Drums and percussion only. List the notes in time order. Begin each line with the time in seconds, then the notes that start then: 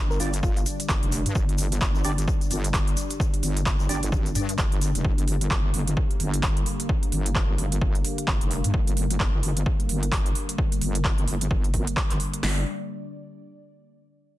0.11 shaker
0.20 open hi-hat, shaker
0.33 closed hi-hat, shaker
0.43 kick, shaker
0.57 closed hi-hat, shaker
0.66 open hi-hat, shaker
0.80 closed hi-hat, shaker
0.89 kick, clap, shaker
1.03 closed hi-hat
1.12 open hi-hat, shaker
1.26 closed hi-hat, shaker
1.35 kick, shaker
1.49 closed hi-hat
1.58 open hi-hat, shaker
1.72 closed hi-hat, shaker
1.81 kick, clap, shaker
1.95 shaker
2.04 open hi-hat, shaker
2.18 closed hi-hat, shaker
2.28 kick, shaker
2.41 closed hi-hat, shaker
2.51 open hi-hat, shaker
2.64 closed hi-hat, shaker
2.74 kick, clap, open hi-hat, shaker
2.87 closed hi-hat
2.97 open hi-hat, shaker
3.10 closed hi-hat, shaker
3.20 kick, shaker
3.34 closed hi-hat
3.43 open hi-hat, shaker
3.57 closed hi-hat, shaker
3.66 kick, clap, shaker
3.80 shaker
3.89 open hi-hat, shaker
4.03 closed hi-hat, shaker
4.12 kick, shaker
4.26 closed hi-hat, shaker
4.35 open hi-hat, shaker
4.49 closed hi-hat, shaker
4.58 kick, clap, shaker
4.72 closed hi-hat
4.81 open hi-hat, shaker
4.95 closed hi-hat, shaker
5.05 kick
5.18 closed hi-hat
5.28 open hi-hat
5.41 closed hi-hat
5.51 kick, clap
5.74 open hi-hat
5.88 closed hi-hat
5.97 kick
6.11 closed hi-hat
6.20 open hi-hat
6.34 closed hi-hat
6.43 kick, clap, open hi-hat
6.57 closed hi-hat
6.66 open hi-hat
6.80 closed hi-hat
6.89 kick
7.03 closed hi-hat
7.12 open hi-hat
7.26 closed hi-hat
7.35 kick, clap
7.58 open hi-hat
7.72 closed hi-hat
7.82 kick
7.95 closed hi-hat
8.05 open hi-hat
8.18 closed hi-hat
8.28 kick, clap
8.41 closed hi-hat
8.51 open hi-hat
8.64 closed hi-hat
8.74 kick
8.87 closed hi-hat
8.97 open hi-hat
9.11 closed hi-hat
9.20 kick, clap
9.43 open hi-hat
9.57 closed hi-hat
9.66 kick
9.80 closed hi-hat
9.89 open hi-hat
10.03 closed hi-hat
10.12 kick, clap, open hi-hat
10.26 closed hi-hat
10.35 open hi-hat
10.49 closed hi-hat
10.58 kick
10.72 closed hi-hat
10.81 open hi-hat
10.95 closed hi-hat
11.05 kick, clap
11.18 closed hi-hat
11.28 open hi-hat
11.41 closed hi-hat
11.51 kick
11.64 closed hi-hat
11.74 kick, open hi-hat
11.87 closed hi-hat
11.97 kick, clap
12.10 clap, closed hi-hat
12.20 open hi-hat
12.34 closed hi-hat
12.43 snare, open hi-hat